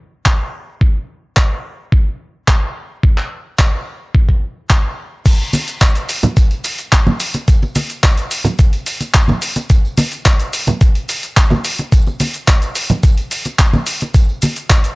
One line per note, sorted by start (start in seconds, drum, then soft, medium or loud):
0.26 kick loud
0.26 clap loud
0.81 kick loud
1.37 kick loud
1.37 clap loud
1.92 kick loud
2.48 kick loud
2.48 clap loud
3.03 kick loud
3.18 clap soft
3.59 kick loud
3.59 clap loud
4.15 kick loud
4.29 kick medium
4.70 kick loud
4.70 clap loud
5.26 kick loud
5.26 closed hi-hat medium
5.26 crash loud
5.26 tambourine medium
5.26 shaker soft
5.39 tambourine soft
5.53 open hi-hat loud
5.53 tambourine medium
5.53 high conga medium
5.53 shaker medium
5.68 closed hi-hat medium
5.68 tambourine soft
5.68 shaker soft
5.80 kick loud
5.80 clap loud
5.80 closed hi-hat medium
5.80 tambourine soft
5.80 shaker soft
5.95 closed hi-hat soft
5.95 tambourine soft
5.95 shaker soft
6.09 open hi-hat loud
6.09 tambourine medium
6.09 shaker medium
6.23 closed hi-hat medium
6.23 tambourine soft
6.23 high conga medium
6.23 low conga loud
6.23 shaker soft
6.36 kick loud
6.36 closed hi-hat medium
6.36 tambourine soft
6.36 shaker soft
6.51 closed hi-hat soft
6.51 tambourine soft
6.64 open hi-hat loud
6.64 tambourine medium
6.64 shaker medium
6.79 closed hi-hat medium
6.79 tambourine soft
6.79 shaker soft
6.92 kick loud
6.92 clap loud
6.92 closed hi-hat medium
6.92 tambourine medium
6.92 shaker soft
7.07 tambourine soft
7.07 high conga medium
7.07 low conga medium
7.20 open hi-hat loud
7.20 tambourine loud
7.20 shaker medium
7.34 closed hi-hat medium
7.34 tambourine soft
7.34 muted conga medium
7.34 shaker soft
7.48 kick loud
7.48 closed hi-hat medium
7.48 tambourine medium
7.48 shaker soft
7.62 tambourine soft
7.62 muted conga medium
7.75 open hi-hat loud
7.75 tambourine medium
7.75 high conga loud
7.75 shaker medium
7.90 closed hi-hat medium
7.90 tambourine soft
7.90 shaker soft
8.03 kick loud
8.03 clap loud
8.03 closed hi-hat medium
8.03 tambourine soft
8.03 shaker soft
8.17 closed hi-hat soft
8.17 tambourine soft
8.17 shaker soft
8.31 open hi-hat loud
8.31 tambourine medium
8.31 shaker medium
8.44 closed hi-hat medium
8.44 tambourine soft
8.44 high conga medium
8.44 low conga loud
8.44 shaker soft
8.59 kick loud
8.59 closed hi-hat medium
8.59 tambourine medium
8.59 shaker soft
8.73 closed hi-hat soft
8.73 tambourine soft
8.86 open hi-hat loud
8.86 tambourine medium
8.86 shaker medium
9.00 closed hi-hat medium
9.00 tambourine soft
9.00 muted conga medium
9.00 shaker soft
9.14 kick loud
9.14 clap loud
9.14 closed hi-hat medium
9.14 tambourine medium
9.14 shaker soft
9.28 tambourine soft
9.28 high conga medium
9.28 low conga medium
9.42 open hi-hat loud
9.42 tambourine medium
9.42 shaker medium
9.56 closed hi-hat medium
9.56 tambourine soft
9.56 muted conga medium
9.56 shaker soft
9.70 kick loud
9.70 closed hi-hat medium
9.70 tambourine soft
9.70 shaker soft
9.85 tambourine soft
9.97 open hi-hat loud
9.97 tambourine loud
9.97 high conga loud
9.97 shaker medium
10.12 closed hi-hat medium
10.12 tambourine soft
10.12 shaker soft
10.25 kick loud
10.25 clap loud
10.25 closed hi-hat medium
10.25 tambourine soft
10.25 shaker soft
10.39 closed hi-hat soft
10.39 tambourine soft
10.39 shaker soft
10.53 open hi-hat loud
10.53 tambourine loud
10.53 shaker medium
10.67 closed hi-hat medium
10.67 tambourine soft
10.67 high conga medium
10.67 low conga loud
10.67 shaker soft
10.81 kick loud
10.81 closed hi-hat medium
10.81 tambourine soft
10.81 shaker soft
10.95 closed hi-hat soft
10.95 tambourine soft
11.09 open hi-hat loud
11.09 tambourine medium
11.09 shaker medium
11.23 closed hi-hat medium
11.23 tambourine soft
11.23 shaker soft
11.37 kick loud
11.37 clap loud
11.37 closed hi-hat medium
11.37 tambourine soft
11.37 shaker soft
11.50 tambourine soft
11.50 high conga loud
11.50 low conga medium
11.65 open hi-hat loud
11.65 tambourine medium
11.65 shaker medium
11.79 closed hi-hat medium
11.79 tambourine soft
11.79 muted conga medium
11.79 shaker soft
11.92 kick loud
11.92 closed hi-hat medium
11.92 tambourine medium
11.92 shaker soft
12.06 tambourine soft
12.06 muted conga soft
12.20 open hi-hat loud
12.20 tambourine medium
12.20 high conga medium
12.20 shaker medium
12.34 closed hi-hat soft
12.34 tambourine soft
12.34 shaker soft
12.48 kick loud
12.48 clap loud
12.48 closed hi-hat medium
12.48 tambourine soft
12.48 shaker soft
12.62 closed hi-hat soft
12.62 tambourine soft
12.62 shaker soft
12.75 open hi-hat loud
12.75 tambourine medium
12.75 shaker medium
12.90 closed hi-hat medium
12.90 tambourine soft
12.90 high conga medium
12.90 low conga medium
12.90 shaker soft
13.03 kick loud
13.03 closed hi-hat medium
13.03 tambourine soft
13.03 shaker soft
13.17 closed hi-hat soft
13.17 tambourine soft
13.31 open hi-hat loud
13.31 tambourine medium
13.31 shaker medium
13.45 closed hi-hat soft
13.45 tambourine soft
13.45 muted conga medium
13.45 shaker soft
13.59 kick loud
13.59 clap loud
13.59 closed hi-hat medium
13.59 tambourine medium
13.59 shaker soft
13.73 tambourine soft
13.73 high conga medium
13.73 low conga medium
13.86 open hi-hat loud
13.86 tambourine loud
13.86 shaker medium
14.01 closed hi-hat medium
14.01 tambourine soft
14.01 muted conga medium
14.01 shaker soft
14.14 kick loud
14.14 closed hi-hat medium
14.14 tambourine medium
14.14 shaker soft
14.29 tambourine soft
14.42 open hi-hat loud
14.42 tambourine loud
14.42 high conga medium
14.42 shaker medium
14.56 closed hi-hat soft
14.56 tambourine soft
14.56 shaker soft
14.70 kick loud
14.70 clap loud
14.70 closed hi-hat medium
14.70 tambourine medium
14.70 shaker soft
14.84 closed hi-hat soft
14.84 tambourine soft
14.84 shaker soft